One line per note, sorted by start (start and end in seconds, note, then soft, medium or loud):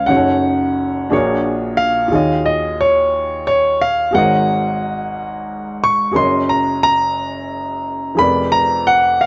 0.00 0.12 C#2 medium
0.00 0.12 C#3 medium
0.00 0.07 C#4 medium
0.00 0.11 F4 soft
0.00 0.10 G#4 soft
0.00 0.10 B4 medium
0.00 0.11 C#5 medium
0.06 1.07 F#1 medium
0.06 1.06 F#2 medium
0.06 1.10 C#4 medium
0.06 1.10 D#4 medium
0.06 1.09 F#4 medium
0.06 0.16 G#4 soft
0.06 1.82 F#5 medium
0.11 1.11 C#5 medium
0.16 1.14 A4 medium
1.10 2.08 A#1 medium
1.10 2.09 A#2 medium
1.10 2.12 D4 medium
1.10 2.09 F#4 medium
1.10 2.10 G#4 medium
1.10 2.13 A#4 medium
1.10 2.12 C#5 medium
1.77 2.41 F5 loud
2.08 4.10 D#2 medium
2.08 4.10 D#3 medium
2.08 4.08 F4 medium
2.08 4.10 F#4 medium
2.08 4.10 G#4 medium
2.13 4.11 C#5 medium
2.13 4.12 D#5 medium
2.46 2.77 D#5 medium
2.81 3.46 C#5 medium
3.47 3.82 C#5 medium
3.82 4.16 F5 loud
4.11 6.13 G#1 medium
4.11 6.13 G#2 medium
4.11 6.10 F#4 medium
4.11 6.11 G#4 medium
4.11 6.13 A#4 medium
4.11 5.88 F#5 medium
4.16 4.22 C5 soft
4.16 6.15 D#5 medium
4.22 6.15 C#5 medium
5.84 6.15 C#6 medium
6.12 8.14 F#1 medium
6.12 8.14 F#2 medium
6.12 8.13 F#4 medium
6.12 8.13 G#4 medium
6.12 8.14 A#4 medium
6.16 8.15 C#5 medium
6.16 8.16 D#5 medium
6.16 6.48 C6 medium
6.49 6.82 A#5 medium
6.83 8.15 A#5 loud
8.15 9.26 F1 medium
8.15 9.26 F2 medium
8.15 9.26 F3 medium
8.15 9.26 G#4 medium
8.15 9.26 A#4 medium
8.15 8.50 B5 medium
8.20 9.26 B4 medium
8.20 9.26 D5 medium
8.52 8.87 A#5 medium
8.87 9.22 F#5 loud
9.21 9.26 F5 medium